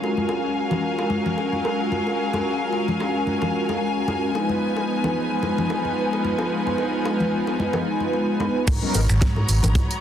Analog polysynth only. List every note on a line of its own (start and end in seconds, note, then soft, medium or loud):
0.01 4.31 G#3 medium
0.01 4.32 C#4 medium
0.01 4.32 F4 medium
0.01 4.32 F#4 medium
0.01 4.32 A#4 medium
4.33 8.64 G#3 medium
4.33 8.64 B3 medium
4.33 8.64 D#4 medium
4.33 8.64 F4 medium
4.33 8.65 B4 medium
8.82 9.00 F#3 medium
8.82 9.00 B3 medium
8.82 9.00 C#4 medium
8.82 9.00 D#4 medium
8.82 9.01 A#4 loud